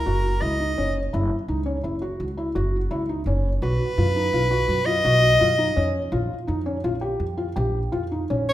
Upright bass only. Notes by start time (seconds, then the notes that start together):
0.06 F#1
0.42 C#2
0.78 F#1
1.14 F#1
1.48 C#2
1.84 F#1
2.20 C#2
2.56 F#1
2.91 C#2
3.26 F#1
3.62 B1
3.98 F#2
4.33 B1
4.68 F#2
5.05 B1
5.41 F#2
5.77 F2
6.12 A#1
6.48 F2
6.84 A#1
7.20 F2
7.56 A#1
7.92 F2
8.30 A#1